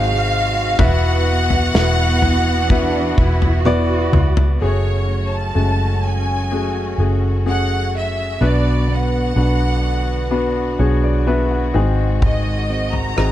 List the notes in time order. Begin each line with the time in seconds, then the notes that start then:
Already playing: G#1 G#2 C3 F#3 G#3 C4 D#4 F#4 G#4 C5 F5
0.79 E1 B2 E3 B3 E4 F#4 B4 E5 F#5, kick, floor tom
1.27 E4
1.50 floor tom
1.74 E1 B3 E4 F#4 B4 F#5, snare
2.22 E4, floor tom
2.68 B3 D4 E4 F#4 B4 E5, kick, floor tom
3.17 E1 E4 F#4, kick
3.42 floor tom
3.65 B3 E4 F#4 B4 D5, high tom
4.13 C#2, mid tom
4.37 floor tom
4.60 F#1 F#2 C#3 F#3 A3 C#4 F#4 G#4 C#5
5.08 A3
5.31 A5
5.55 F#1 G#3 A3 C#4 F#4
6.03 G#5
6.51 A3 C#4 F#4 G#4
6.98 F#1 A3 C#4 F#4 G#4
7.45 A3 C#4 F#4 G#4 F#5
7.98 E5
8.41 B1 B2 D3 F#3 B3 D4 F#4 B4
8.45 D5
8.88 B3
8.93 F#5
9.36 B1 B3 D4 F#4 B4
10.31 B3 D4 F#4 B4
10.79 B1 B3 D4 F#4 G#4 C#5
11.04 D5
11.26 B3 D4 F#4 B4 E5
11.51 F#5
11.74 G#1 G#2 C3 D#3 G#3 C4 D#4 F#4 G#4 G#5
12.22 G#2 D#5, kick, floor tom
12.70 C4
12.92 A#5, floor tom
13.17 G#1 C4 D#4 F#4 G#4, cross-stick